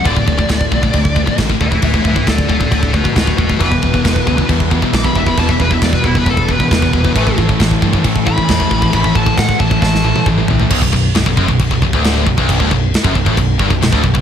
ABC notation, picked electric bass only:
X:1
M:4/4
L:1/16
Q:1/4=135
K:Bm
V:1 name="Picked electric bass" clef=bass
D,,,2 D,,,2 D,,,2 B,,,2 D,,4 A,,,2 D,,,2 | D,,,2 D,,,2 D,,2 D,,,2 D,,,4 D,,,2 ^D,,,2 | E,,,2 E,,,2 E,,,2 D,,2 E,,4 B,,,2 E,,,2 | E,,,2 E,,,2 E,,2 E,,,2 E,,,4 E,,,2 E,,,2 |
A,,,2 A,,,2 A,,,2 G,,2 A,,4 E,,2 A,,,2 | A,,,2 A,,,2 A,,2 A,,,2 A,,,4 A,,,2 ^A,,,2 | B,,,, B,,,, B,,,,2 B,,,, B,,,, F,,, B,,,, B,,,, B,,,, B,,,, D,,,3 B,,,, B,,,,- | B,,,, D,,, B,,,,2 z F,,, B,,,, A,,, B,,,,2 G,,, B,,,, B,,,, D,,, B,,,, B,,,, |]